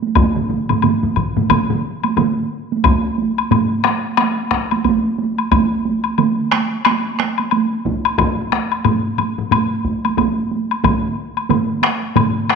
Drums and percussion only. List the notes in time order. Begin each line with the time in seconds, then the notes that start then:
0.02 taiko high
0.15 taiko, taiko low-mid, taiko mid, taiko high, high woodblock
0.36 taiko low-mid, taiko mid
0.49 taiko low-mid, taiko mid, taiko high
0.69 taiko low-mid, taiko mid, taiko high, high woodblock
0.82 taiko low-mid, taiko mid, taiko high, high woodblock
1.03 taiko low-mid, taiko mid
1.16 taiko, taiko low-mid, taiko mid, high woodblock
1.36 taiko low-mid, taiko mid, taiko high
1.50 taiko, taiko low-mid, taiko mid, taiko high, high woodblock
1.70 taiko low-mid, taiko mid
2.03 taiko high, high woodblock
2.17 taiko low-mid, taiko mid, taiko high, high woodblock
2.72 taiko high
2.84 taiko, taiko high, high woodblock
3.05 taiko high
3.18 taiko high
3.38 taiko high, high woodblock
3.51 taiko low-mid, taiko high, high woodblock
3.71 taiko high
3.84 taiko rim, taiko high, high woodblock
4.05 taiko high
4.17 taiko rim, taiko high, high woodblock
4.39 taiko high
4.51 taiko rim, taiko, taiko high
4.71 taiko high, high woodblock
4.84 taiko, taiko high, high woodblock
5.06 taiko high
5.18 taiko high
5.38 taiko high, high woodblock
5.51 taiko, taiko high, high woodblock
5.73 taiko high
5.85 taiko high
6.04 taiko high, high woodblock
6.18 taiko mid, taiko high, high woodblock
6.39 taiko high
6.51 taiko rim, taiko high, high woodblock
6.73 taiko high
6.85 taiko rim, taiko high, high woodblock
7.06 taiko high
7.19 taiko rim, taiko high
7.38 taiko high, high woodblock
7.51 taiko high, high woodblock
7.73 taiko high
7.85 taiko, taiko high
8.05 taiko high, high woodblock
8.18 taiko, taiko low-mid, taiko high, high woodblock
8.39 taiko high
8.52 taiko rim, taiko high
8.72 taiko high, high woodblock
8.85 taiko low-mid, taiko high, high woodblock
9.06 taiko high
9.18 taiko low-mid, taiko high, high woodblock
9.38 taiko low-mid
9.51 taiko low-mid, taiko high, high woodblock
9.73 taiko high
9.84 taiko, taiko high
10.05 taiko high, high woodblock
10.17 taiko, taiko low-mid, taiko high, high woodblock
10.38 taiko high
10.51 taiko high
10.71 taiko high, high woodblock
10.84 taiko, taiko low-mid, taiko mid, taiko high, high woodblock
11.04 taiko high
11.37 taiko high, high woodblock
11.49 taiko low-mid, taiko mid, taiko high, high woodblock
11.82 taiko rim, taiko high, high woodblock
12.02 taiko high
12.16 taiko low-mid, taiko mid, taiko high, high woodblock
12.35 taiko high
12.49 taiko rim, taiko high